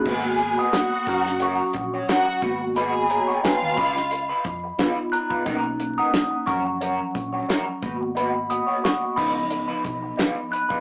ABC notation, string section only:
X:1
M:4/4
L:1/16
Q:"Swing 16ths" 1/4=89
K:G#dor
V:1 name="String section"
[Gg]4 [Ff]6 z2 [Ff]3 z | [Gg]4 [Ee]6 z6 | z16 | z16 |]